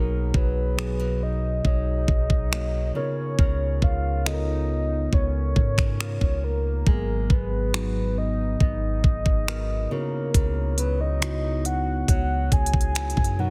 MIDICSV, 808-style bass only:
0, 0, Header, 1, 2, 480
1, 0, Start_track
1, 0, Tempo, 869565
1, 1870, Time_signature, 4, 2, 24, 8
1, 7453, End_track
2, 0, Start_track
2, 0, Title_t, "808-style bass"
2, 0, Program_c, 0, 38
2, 0, Note_on_c, 0, 35, 100
2, 180, Note_off_c, 0, 35, 0
2, 189, Note_on_c, 0, 35, 95
2, 887, Note_off_c, 0, 35, 0
2, 909, Note_on_c, 0, 35, 100
2, 1140, Note_off_c, 0, 35, 0
2, 1149, Note_on_c, 0, 35, 96
2, 1610, Note_off_c, 0, 35, 0
2, 1870, Note_on_c, 0, 37, 104
2, 2100, Note_off_c, 0, 37, 0
2, 2110, Note_on_c, 0, 37, 94
2, 2808, Note_off_c, 0, 37, 0
2, 2830, Note_on_c, 0, 37, 108
2, 3060, Note_off_c, 0, 37, 0
2, 3070, Note_on_c, 0, 44, 102
2, 3415, Note_off_c, 0, 44, 0
2, 3430, Note_on_c, 0, 37, 102
2, 3775, Note_off_c, 0, 37, 0
2, 3790, Note_on_c, 0, 32, 98
2, 4020, Note_off_c, 0, 32, 0
2, 4030, Note_on_c, 0, 32, 100
2, 4728, Note_off_c, 0, 32, 0
2, 4750, Note_on_c, 0, 32, 98
2, 4980, Note_off_c, 0, 32, 0
2, 4990, Note_on_c, 0, 32, 100
2, 5451, Note_off_c, 0, 32, 0
2, 5710, Note_on_c, 0, 37, 95
2, 6648, Note_off_c, 0, 37, 0
2, 6670, Note_on_c, 0, 37, 108
2, 6900, Note_off_c, 0, 37, 0
2, 6910, Note_on_c, 0, 37, 98
2, 7255, Note_off_c, 0, 37, 0
2, 7270, Note_on_c, 0, 42, 101
2, 7453, Note_off_c, 0, 42, 0
2, 7453, End_track
0, 0, End_of_file